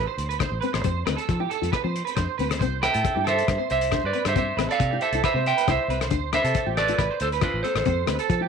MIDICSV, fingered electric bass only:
0, 0, Header, 1, 2, 480
1, 0, Start_track
1, 0, Key_signature, 0, "major"
1, 0, Tempo, 438917
1, 916, Time_signature, 4, 2, 24, 8
1, 9275, End_track
2, 0, Start_track
2, 0, Title_t, "Fingered electric bass"
2, 0, Program_c, 0, 33
2, 192, Note_on_c, 0, 38, 74
2, 486, Note_off_c, 0, 38, 0
2, 565, Note_on_c, 0, 33, 82
2, 654, Note_off_c, 0, 33, 0
2, 808, Note_on_c, 0, 33, 85
2, 896, Note_off_c, 0, 33, 0
2, 926, Note_on_c, 0, 41, 104
2, 1114, Note_off_c, 0, 41, 0
2, 1161, Note_on_c, 0, 38, 95
2, 1261, Note_off_c, 0, 38, 0
2, 1408, Note_on_c, 0, 53, 94
2, 1596, Note_off_c, 0, 53, 0
2, 1773, Note_on_c, 0, 41, 81
2, 1860, Note_off_c, 0, 41, 0
2, 2014, Note_on_c, 0, 53, 85
2, 2203, Note_off_c, 0, 53, 0
2, 2372, Note_on_c, 0, 41, 86
2, 2469, Note_off_c, 0, 41, 0
2, 2612, Note_on_c, 0, 38, 86
2, 2849, Note_on_c, 0, 36, 83
2, 2866, Note_off_c, 0, 38, 0
2, 3140, Note_off_c, 0, 36, 0
2, 3223, Note_on_c, 0, 45, 92
2, 3308, Note_off_c, 0, 45, 0
2, 3453, Note_on_c, 0, 43, 88
2, 3733, Note_off_c, 0, 43, 0
2, 3806, Note_on_c, 0, 43, 89
2, 3907, Note_off_c, 0, 43, 0
2, 4053, Note_on_c, 0, 36, 68
2, 4342, Note_off_c, 0, 36, 0
2, 4414, Note_on_c, 0, 43, 74
2, 4503, Note_off_c, 0, 43, 0
2, 4650, Note_on_c, 0, 43, 86
2, 4931, Note_off_c, 0, 43, 0
2, 4996, Note_on_c, 0, 33, 94
2, 5101, Note_off_c, 0, 33, 0
2, 5253, Note_on_c, 0, 48, 92
2, 5441, Note_off_c, 0, 48, 0
2, 5602, Note_on_c, 0, 36, 81
2, 5696, Note_off_c, 0, 36, 0
2, 5840, Note_on_c, 0, 48, 86
2, 6035, Note_off_c, 0, 48, 0
2, 6212, Note_on_c, 0, 36, 92
2, 6310, Note_off_c, 0, 36, 0
2, 6431, Note_on_c, 0, 36, 82
2, 6684, Note_off_c, 0, 36, 0
2, 6684, Note_on_c, 0, 38, 102
2, 6975, Note_off_c, 0, 38, 0
2, 7043, Note_on_c, 0, 48, 85
2, 7134, Note_off_c, 0, 48, 0
2, 7291, Note_on_c, 0, 33, 91
2, 7569, Note_off_c, 0, 33, 0
2, 7638, Note_on_c, 0, 33, 99
2, 7740, Note_off_c, 0, 33, 0
2, 7880, Note_on_c, 0, 38, 74
2, 8170, Note_off_c, 0, 38, 0
2, 8242, Note_on_c, 0, 33, 81
2, 8332, Note_off_c, 0, 33, 0
2, 8475, Note_on_c, 0, 33, 91
2, 8568, Note_off_c, 0, 33, 0
2, 8596, Note_on_c, 0, 41, 112
2, 8786, Note_off_c, 0, 41, 0
2, 8829, Note_on_c, 0, 38, 99
2, 8932, Note_off_c, 0, 38, 0
2, 9071, Note_on_c, 0, 53, 98
2, 9262, Note_off_c, 0, 53, 0
2, 9275, End_track
0, 0, End_of_file